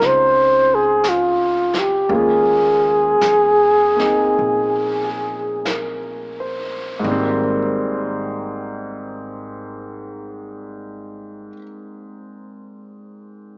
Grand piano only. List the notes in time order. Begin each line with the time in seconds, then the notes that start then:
Already playing: G#3 C4 C#4 D#4 F4
2.09 G#3 A#3 C#4 F4
3.96 A#3 C4 D#4
5.04 G#4
5.66 A#4
6.40 C5
7.00 G#2 D#3
7.05 G3 A#3
7.11 C4